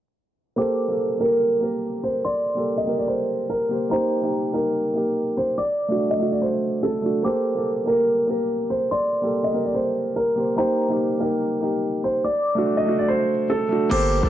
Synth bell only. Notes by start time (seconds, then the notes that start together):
0.58 D6
2.25 C6
3.91 A#5
5.58 D6
7.25 D6
8.91 C6
10.58 A#5
12.25 D6
13.91 D6